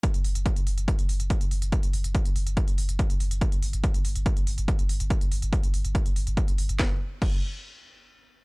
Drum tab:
CC |----------------|----------------|----------------|----------------|
HH |xxoxxxoxxxoxxxox|xxoxxxoxxxoxxxox|xxoxxxoxxxoxxxox|xxoxxxoxxxoxxxox|
SD |----------------|----------------|----------------|----------------|
BD |o---o---o---o---|o---o---o---o---|o---o---o---o---|o---o---o---o---|

CC |----x-----------|
HH |----------------|
SD |o---------------|
BD |o---o-----------|